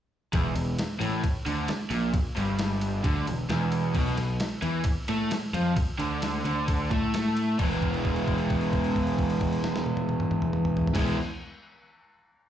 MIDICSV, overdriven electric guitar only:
0, 0, Header, 1, 3, 480
1, 0, Start_track
1, 0, Key_signature, 4, "major"
1, 0, Tempo, 453172
1, 354, Time_signature, 4, 2, 24, 8
1, 13230, End_track
2, 0, Start_track
2, 0, Title_t, "Overdriven electric guitar"
2, 0, Program_c, 0, 29
2, 352, Note_on_c, 0, 40, 104
2, 584, Note_off_c, 0, 40, 0
2, 595, Note_on_c, 0, 40, 67
2, 784, Note_off_c, 0, 40, 0
2, 1060, Note_on_c, 0, 45, 101
2, 1295, Note_off_c, 0, 45, 0
2, 1550, Note_on_c, 0, 50, 103
2, 1779, Note_off_c, 0, 50, 0
2, 2023, Note_on_c, 0, 46, 94
2, 2254, Note_off_c, 0, 46, 0
2, 2501, Note_on_c, 0, 43, 99
2, 3212, Note_off_c, 0, 43, 0
2, 3216, Note_on_c, 0, 50, 101
2, 3450, Note_off_c, 0, 50, 0
2, 3461, Note_on_c, 0, 40, 77
2, 3652, Note_off_c, 0, 40, 0
2, 3702, Note_on_c, 0, 40, 107
2, 4174, Note_off_c, 0, 40, 0
2, 4179, Note_on_c, 0, 47, 108
2, 4412, Note_off_c, 0, 47, 0
2, 4430, Note_on_c, 0, 47, 76
2, 4617, Note_off_c, 0, 47, 0
2, 4897, Note_on_c, 0, 52, 100
2, 5133, Note_off_c, 0, 52, 0
2, 5395, Note_on_c, 0, 57, 108
2, 5624, Note_off_c, 0, 57, 0
2, 5873, Note_on_c, 0, 53, 102
2, 6104, Note_off_c, 0, 53, 0
2, 6344, Note_on_c, 0, 50, 100
2, 6817, Note_off_c, 0, 50, 0
2, 6830, Note_on_c, 0, 50, 96
2, 7308, Note_off_c, 0, 50, 0
2, 7322, Note_on_c, 0, 57, 105
2, 8033, Note_on_c, 0, 52, 83
2, 8036, Note_off_c, 0, 57, 0
2, 8047, Note_on_c, 0, 56, 93
2, 8063, Note_on_c, 0, 59, 99
2, 8070, Note_on_c, 0, 64, 98
2, 11578, Note_off_c, 0, 52, 0
2, 11582, Note_on_c, 0, 52, 87
2, 11593, Note_off_c, 0, 56, 0
2, 11597, Note_on_c, 0, 56, 97
2, 11607, Note_off_c, 0, 59, 0
2, 11611, Note_on_c, 0, 59, 99
2, 11620, Note_off_c, 0, 64, 0
2, 11625, Note_on_c, 0, 64, 97
2, 11804, Note_off_c, 0, 52, 0
2, 11812, Note_off_c, 0, 56, 0
2, 11818, Note_off_c, 0, 59, 0
2, 11825, Note_off_c, 0, 64, 0
2, 13230, End_track
3, 0, Start_track
3, 0, Title_t, "Muted overdriven electric guitar strokes"
3, 1304, Note_on_c, 9, 29, 55
3, 1410, Note_off_c, 9, 29, 0
3, 1793, Note_on_c, 9, 29, 64
3, 1899, Note_off_c, 9, 29, 0
3, 2254, Note_on_c, 9, 29, 55
3, 2360, Note_off_c, 9, 29, 0
3, 5146, Note_on_c, 9, 29, 59
3, 5252, Note_off_c, 9, 29, 0
3, 5634, Note_on_c, 9, 29, 60
3, 5740, Note_off_c, 9, 29, 0
3, 6109, Note_on_c, 9, 29, 57
3, 6215, Note_off_c, 9, 29, 0
3, 13230, End_track
0, 0, End_of_file